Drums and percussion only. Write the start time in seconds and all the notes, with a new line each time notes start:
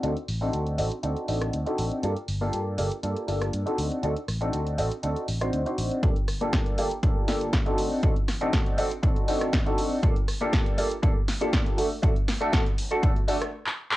0.03 closed hi-hat
0.17 closed hi-hat
0.28 open hi-hat
0.53 closed hi-hat
0.66 closed hi-hat
0.78 open hi-hat
0.92 closed hi-hat
1.03 closed hi-hat
1.16 closed hi-hat
1.28 open hi-hat
1.41 cross-stick, closed hi-hat
1.53 closed hi-hat
1.66 closed hi-hat
1.78 open hi-hat
1.91 closed hi-hat
2.03 closed hi-hat
2.17 closed hi-hat
2.28 open hi-hat
2.53 closed hi-hat
2.78 open hi-hat
2.91 closed hi-hat
3.03 closed hi-hat
3.16 closed hi-hat
3.28 open hi-hat
3.41 cross-stick, closed hi-hat
3.53 closed hi-hat
3.67 closed hi-hat
3.78 open hi-hat
3.91 closed hi-hat
4.03 closed hi-hat
4.16 closed hi-hat
4.28 cross-stick, open hi-hat
4.41 closed hi-hat
4.53 closed hi-hat
4.66 closed hi-hat
4.78 open hi-hat
4.91 closed hi-hat
5.03 closed hi-hat
5.16 closed hi-hat
5.28 open hi-hat
5.41 cross-stick, closed hi-hat
5.53 closed hi-hat
5.66 closed hi-hat
5.78 open hi-hat
5.91 closed hi-hat
6.03 kick, closed hi-hat
6.16 closed hi-hat
6.28 cross-stick, open hi-hat
6.41 closed hi-hat
6.53 kick, snare, closed hi-hat
6.66 closed hi-hat
6.78 open hi-hat
6.91 closed hi-hat
7.03 kick, closed hi-hat
7.28 snare, open hi-hat
7.41 closed hi-hat
7.53 kick, snare, closed hi-hat
7.66 closed hi-hat
7.78 open hi-hat
8.03 kick, closed hi-hat
8.16 closed hi-hat
8.28 cross-stick, snare, open hi-hat
8.41 closed hi-hat
8.53 kick, snare, closed hi-hat
8.66 closed hi-hat
8.78 open hi-hat
8.91 closed hi-hat
9.03 kick, closed hi-hat
9.16 closed hi-hat
9.28 open hi-hat
9.41 cross-stick, closed hi-hat
9.53 kick, snare, closed hi-hat
9.66 closed hi-hat
9.78 open hi-hat
10.03 kick, closed hi-hat
10.16 closed hi-hat
10.28 cross-stick, open hi-hat
10.41 closed hi-hat
10.53 kick, snare, closed hi-hat
10.66 closed hi-hat
10.78 open hi-hat
10.91 closed hi-hat
11.03 kick, closed hi-hat
11.28 snare, open hi-hat
11.41 closed hi-hat
11.53 kick, snare, closed hi-hat
11.66 closed hi-hat
11.78 open hi-hat
12.03 kick, closed hi-hat
12.16 closed hi-hat
12.28 cross-stick, snare, open hi-hat
12.42 closed hi-hat
12.53 kick, snare, closed hi-hat
12.66 closed hi-hat
12.78 open hi-hat
12.91 closed hi-hat
13.03 kick, closed hi-hat
13.16 closed hi-hat
13.28 open hi-hat
13.42 cross-stick, closed hi-hat
13.66 clap
13.91 clap